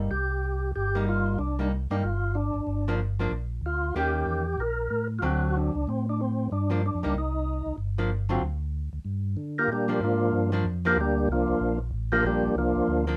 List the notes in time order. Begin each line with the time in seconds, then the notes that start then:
Already playing: D#4
0.11 C2 G4
0.76 G1 G4
0.95 G3 A#3 D#4
1.09 F4
1.39 C2 D4
1.59 G3 A#3 D#4
1.90 G2 G3 A#3 D4 D#4
2.03 G1 F4
2.35 D4
2.54 G1
2.67 G1
2.88 F3 A#3 D4
3.19 F3 A#3 D4
3.31 A#1
3.61 D2
3.66 F4
3.95 D#2 D#3 A#3 C#4 G4
4.26 E2
4.58 A#1 A#4
4.90 A2
5.19 D2 D3 F#3 F4
5.23 C4 F#4
5.57 D4
5.75 C#2
5.87 A2 C4
6.09 D4
6.21 C4
6.51 G2 D4
6.70 F3 A#3 D4
6.86 D4
6.94 F2
7.03 C#2 G3 A#3 D#4
7.15 C2 D#4
7.66 C2
7.78 G1
7.98 F3 A#3 D4
8.29 D3 F#3 C4 F4
8.41 D2
8.93 D2
9.05 G2
9.37 D3
9.58 A#3 F4 G4 A#4
9.68 A#2
9.72 G3 A#3 D4 G4
9.88 F3 A#3 D4
10.00 G#2 F4
10.04 F3 A#3 D4
10.32 G2
10.52 F3 A#3 D4
10.64 F2
10.85 F3 A#3 D4 F4 G4 A#4
10.96 D2
11.00 G3 A#3 D4 G4
11.28 C2 F4
11.32 F3 A#3 D4
11.48 C2
11.60 A#1
11.91 A1
12.12 F3 A#3 D4 F4 G4 A#4
12.23 A#1 G3 G4
12.27 A#3 D4
12.43 A#1
12.55 C2 F3 A#3 F4
12.59 D4
12.76 C2
12.87 D2
13.07 F3 A#3 D4